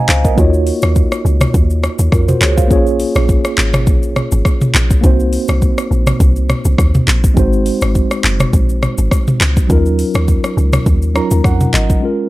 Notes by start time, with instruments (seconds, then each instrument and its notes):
Already playing: tine electric piano G#3 C4 D#4 F#4 C5 D#5 F5 G#5 A#5
0.08 log drum bass C#2, tine electric piano C5 F5, clap, shaker
0.24 tine electric piano A#4 D#5, kick, shaker
0.35 log drum bass D#2, tine electric piano A#3 D#4 F4 F#4, kick, shaker
0.40 tine electric piano C#5
0.54 shaker
0.67 open hi-hat, shaker
0.82 log drum bass D#2, cross-stick, shaker
0.96 kick, shaker
1.12 cross-stick, shaker
1.25 log drum bass C#2, shaker
1.41 cross-stick, mid tom, shaker
1.54 log drum bass D#2, kick, shaker
1.70 shaker
1.83 cross-stick, shaker
1.99 log drum bass D#2, shaker
2.12 log drum bass F2, tine electric piano F4 A#4, kick, cross-stick, shaker
2.28 tine electric piano F#4 C5, mid tom, shaker
2.41 log drum bass C#2, tine electric piano G#4 C#5, clap, shaker
2.57 tine electric piano C5 F5, kick, shaker
2.68 log drum bass A#1, tine electric piano A#3 C#4 F4 G#4, kick, shaker
2.73 tine electric piano C#5
2.87 shaker
3.00 open hi-hat, shaker
3.15 log drum bass A#1, cross-stick, shaker
3.29 kick, shaker
3.45 cross-stick, shaker
3.58 log drum bass G#1, clap, shaker
3.74 cross-stick, mid tom, shaker
3.87 log drum bass A#1, kick, shaker
4.03 shaker
4.16 cross-stick, mid tom, shaker
4.32 log drum bass G#1, shaker
4.45 kick, cross-stick, shaker
4.61 mid tom, shaker
4.74 log drum bass A#1, clap, shaker
4.90 kick, shaker
5.01 log drum bass C2, tine electric piano A#3 C4 D#4 F#4, kick, shaker
5.06 tine electric piano C5
5.20 shaker
5.33 open hi-hat, shaker
5.48 log drum bass C2, cross-stick, shaker
5.62 kick, shaker
5.78 cross-stick, shaker
5.91 log drum bass A#1, shaker
6.07 cross-stick, mid tom, shaker
6.20 log drum bass C2, kick, shaker
6.36 shaker
6.49 cross-stick, mid tom, shaker
6.65 log drum bass C2, shaker
6.78 log drum bass D#2, kick, cross-stick, shaker
6.94 mid tom, shaker
7.08 log drum bass A#1, clap, shaker
7.24 kick, shaker
7.34 log drum bass G#1, tine electric piano G#3 C4 D#4 F#4, kick, shaker
7.39 tine electric piano C5
7.53 shaker
7.66 open hi-hat, shaker
7.81 log drum bass G#1, cross-stick, shaker
7.95 kick, shaker
8.11 cross-stick, shaker
8.24 log drum bass F#1, clap, shaker
8.40 cross-stick, mid tom, shaker
8.53 log drum bass A#1, kick, shaker
8.69 shaker
8.82 cross-stick, mid tom, shaker
8.98 log drum bass G#1, shaker
9.11 kick, cross-stick, shaker
9.27 mid tom, shaker
9.41 log drum bass C#2, clap, shaker
9.57 kick, shaker
9.67 log drum bass D#2, tine electric piano F#3 C#4 D#4 F4, kick, shaker
9.72 tine electric piano A#4
9.86 shaker
9.99 open hi-hat, shaker
10.14 log drum bass D#2, cross-stick, shaker
10.28 kick, shaker
10.44 cross-stick, shaker
10.57 log drum bass C#2, shaker
10.73 cross-stick, mid tom, shaker
10.86 log drum bass D#2, kick, shaker
11.02 shaker
11.14 tine electric piano F#3 C#4 D#4 F4 A#4 A#5, cross-stick, shaker
11.31 log drum bass D#2, shaker
11.44 log drum bass F2, tine electric piano F#5, kick, cross-stick, shaker
11.60 mid tom, shaker
11.74 log drum bass G#1, tine electric piano D#5, clap, shaker
11.90 kick, shaker
12.00 tine electric piano G#3 C#4 F4
12.05 tine electric piano A#4